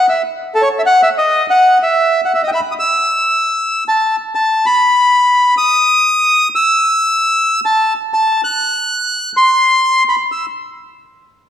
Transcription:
0, 0, Header, 1, 2, 480
1, 0, Start_track
1, 0, Tempo, 315292
1, 1283, Time_signature, 3, 2, 24, 8
1, 17494, End_track
2, 0, Start_track
2, 0, Title_t, "Bandoneon"
2, 0, Program_c, 0, 23
2, 141, Note_on_c, 0, 76, 79
2, 338, Note_off_c, 0, 76, 0
2, 834, Note_on_c, 0, 69, 86
2, 941, Note_off_c, 0, 69, 0
2, 941, Note_on_c, 0, 73, 84
2, 1045, Note_off_c, 0, 73, 0
2, 1200, Note_on_c, 0, 76, 85
2, 1245, Note_off_c, 0, 76, 0
2, 1311, Note_on_c, 0, 78, 105
2, 1544, Note_off_c, 0, 78, 0
2, 1567, Note_on_c, 0, 76, 97
2, 1665, Note_off_c, 0, 76, 0
2, 1797, Note_on_c, 0, 75, 85
2, 2226, Note_off_c, 0, 75, 0
2, 2286, Note_on_c, 0, 78, 98
2, 2709, Note_off_c, 0, 78, 0
2, 2783, Note_on_c, 0, 76, 84
2, 3361, Note_off_c, 0, 76, 0
2, 3428, Note_on_c, 0, 78, 63
2, 3538, Note_off_c, 0, 78, 0
2, 3573, Note_on_c, 0, 76, 70
2, 3681, Note_off_c, 0, 76, 0
2, 3698, Note_on_c, 0, 75, 66
2, 3774, Note_on_c, 0, 79, 67
2, 3808, Note_off_c, 0, 79, 0
2, 3813, Note_off_c, 0, 75, 0
2, 3842, Note_on_c, 0, 76, 70
2, 3878, Note_on_c, 0, 83, 71
2, 3955, Note_off_c, 0, 76, 0
2, 3971, Note_off_c, 0, 83, 0
2, 4132, Note_on_c, 0, 87, 67
2, 4168, Note_off_c, 0, 87, 0
2, 4252, Note_on_c, 0, 88, 106
2, 5842, Note_off_c, 0, 88, 0
2, 5913, Note_on_c, 0, 81, 91
2, 6334, Note_off_c, 0, 81, 0
2, 6621, Note_on_c, 0, 81, 88
2, 7087, Note_off_c, 0, 81, 0
2, 7095, Note_on_c, 0, 83, 101
2, 8442, Note_off_c, 0, 83, 0
2, 8488, Note_on_c, 0, 87, 111
2, 9869, Note_off_c, 0, 87, 0
2, 9975, Note_on_c, 0, 88, 111
2, 11573, Note_off_c, 0, 88, 0
2, 11652, Note_on_c, 0, 81, 98
2, 12077, Note_off_c, 0, 81, 0
2, 12387, Note_on_c, 0, 81, 96
2, 12803, Note_off_c, 0, 81, 0
2, 12851, Note_on_c, 0, 90, 120
2, 14190, Note_off_c, 0, 90, 0
2, 14264, Note_on_c, 0, 84, 119
2, 15274, Note_off_c, 0, 84, 0
2, 15358, Note_on_c, 0, 83, 76
2, 15459, Note_off_c, 0, 83, 0
2, 15706, Note_on_c, 0, 88, 79
2, 15921, Note_off_c, 0, 88, 0
2, 17494, End_track
0, 0, End_of_file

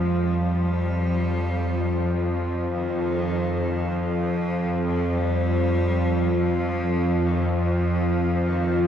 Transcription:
0, 0, Header, 1, 5, 480
1, 0, Start_track
1, 0, Tempo, 1200000
1, 141, Time_signature, 4, 2, 24, 8
1, 3548, End_track
2, 0, Start_track
2, 0, Title_t, "Ambient pad"
2, 0, Program_c, 0, 92
2, 0, Note_on_c, 0, 60, 80
2, 0, Note_on_c, 0, 65, 80
2, 20, Note_on_c, 0, 77, 75
2, 3548, Note_off_c, 0, 60, 0
2, 3548, Note_off_c, 0, 65, 0
2, 3548, Note_off_c, 0, 77, 0
2, 3548, End_track
3, 0, Start_track
3, 0, Title_t, "Singing bowl"
3, 0, Program_c, 1, 14
3, 0, Note_on_c, 1, 60, 56
3, 3548, Note_off_c, 1, 60, 0
3, 3548, End_track
4, 0, Start_track
4, 0, Title_t, "Cello"
4, 0, Program_c, 2, 42
4, 16, Note_on_c, 2, 56, 77
4, 139, Note_on_c, 2, 55, 94
4, 145, Note_off_c, 2, 56, 0
4, 865, Note_on_c, 2, 53, 80
4, 871, Note_off_c, 2, 55, 0
4, 1094, Note_off_c, 2, 53, 0
4, 1097, Note_on_c, 2, 51, 84
4, 1586, Note_on_c, 2, 53, 82
4, 1592, Note_off_c, 2, 51, 0
4, 1940, Note_off_c, 2, 53, 0
4, 1942, Note_on_c, 2, 53, 78
4, 2059, Note_on_c, 2, 55, 89
4, 2065, Note_off_c, 2, 53, 0
4, 2541, Note_on_c, 2, 53, 88
4, 2547, Note_off_c, 2, 55, 0
4, 2906, Note_on_c, 2, 51, 71
4, 2912, Note_off_c, 2, 53, 0
4, 3023, Note_off_c, 2, 51, 0
4, 3026, Note_on_c, 2, 53, 79
4, 3390, Note_on_c, 2, 51, 71
4, 3396, Note_off_c, 2, 53, 0
4, 3520, Note_on_c, 2, 53, 84
4, 3526, Note_off_c, 2, 51, 0
4, 3548, Note_off_c, 2, 53, 0
4, 3548, End_track
5, 0, Start_track
5, 0, Title_t, "Synth drone"
5, 0, Program_c, 3, 95
5, 0, Note_on_c, 3, 41, 65
5, 0, Note_on_c, 3, 53, 68
5, 3548, Note_off_c, 3, 41, 0
5, 3548, Note_off_c, 3, 53, 0
5, 3548, End_track
0, 0, End_of_file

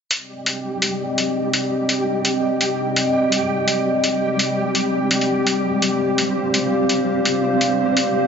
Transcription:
0, 0, Header, 1, 4, 480
1, 0, Start_track
1, 0, Key_signature, -3, "minor"
1, 0, Tempo, 357143
1, 142, Time_signature, 4, 2, 24, 8
1, 11116, End_track
2, 0, Start_track
2, 0, Title_t, "Analog synth pad"
2, 0, Program_c, 0, 89
2, 131, Note_on_c, 0, 60, 73
2, 134, Note_on_c, 0, 67, 65
2, 135, Note_on_c, 0, 74, 66
2, 136, Note_on_c, 0, 75, 80
2, 7793, Note_off_c, 0, 75, 0
2, 7819, Note_on_c, 0, 77, 77
2, 11116, Note_off_c, 0, 60, 0
2, 11116, Note_off_c, 0, 67, 0
2, 11116, Note_off_c, 0, 74, 0
2, 11116, Note_off_c, 0, 77, 0
2, 11116, End_track
3, 0, Start_track
3, 0, Title_t, "Synth texture"
3, 0, Program_c, 1, 99
3, 139, Note_on_c, 1, 67, 81
3, 147, Note_on_c, 1, 55, 79
3, 7821, Note_on_c, 1, 60, 83
3, 7849, Note_off_c, 1, 67, 0
3, 11116, Note_off_c, 1, 55, 0
3, 11116, Note_off_c, 1, 60, 0
3, 11116, End_track
4, 0, Start_track
4, 0, Title_t, "Drums"
4, 144, Note_on_c, 9, 42, 76
4, 278, Note_off_c, 9, 42, 0
4, 623, Note_on_c, 9, 42, 61
4, 757, Note_off_c, 9, 42, 0
4, 1102, Note_on_c, 9, 42, 76
4, 1237, Note_off_c, 9, 42, 0
4, 1585, Note_on_c, 9, 42, 61
4, 1719, Note_off_c, 9, 42, 0
4, 2063, Note_on_c, 9, 42, 77
4, 2197, Note_off_c, 9, 42, 0
4, 2540, Note_on_c, 9, 42, 64
4, 2674, Note_off_c, 9, 42, 0
4, 3021, Note_on_c, 9, 42, 80
4, 3155, Note_off_c, 9, 42, 0
4, 3504, Note_on_c, 9, 42, 62
4, 3638, Note_off_c, 9, 42, 0
4, 3984, Note_on_c, 9, 42, 75
4, 4118, Note_off_c, 9, 42, 0
4, 4463, Note_on_c, 9, 42, 65
4, 4598, Note_off_c, 9, 42, 0
4, 4941, Note_on_c, 9, 42, 74
4, 5075, Note_off_c, 9, 42, 0
4, 5425, Note_on_c, 9, 42, 60
4, 5560, Note_off_c, 9, 42, 0
4, 5904, Note_on_c, 9, 42, 72
4, 6038, Note_off_c, 9, 42, 0
4, 6382, Note_on_c, 9, 42, 60
4, 6517, Note_off_c, 9, 42, 0
4, 6865, Note_on_c, 9, 42, 77
4, 7000, Note_off_c, 9, 42, 0
4, 7007, Note_on_c, 9, 42, 34
4, 7142, Note_off_c, 9, 42, 0
4, 7346, Note_on_c, 9, 42, 56
4, 7481, Note_off_c, 9, 42, 0
4, 7825, Note_on_c, 9, 42, 68
4, 7960, Note_off_c, 9, 42, 0
4, 8307, Note_on_c, 9, 42, 58
4, 8442, Note_off_c, 9, 42, 0
4, 8789, Note_on_c, 9, 42, 73
4, 8924, Note_off_c, 9, 42, 0
4, 9266, Note_on_c, 9, 42, 57
4, 9400, Note_off_c, 9, 42, 0
4, 9750, Note_on_c, 9, 42, 72
4, 9884, Note_off_c, 9, 42, 0
4, 10228, Note_on_c, 9, 42, 58
4, 10362, Note_off_c, 9, 42, 0
4, 10707, Note_on_c, 9, 42, 74
4, 10842, Note_off_c, 9, 42, 0
4, 11116, End_track
0, 0, End_of_file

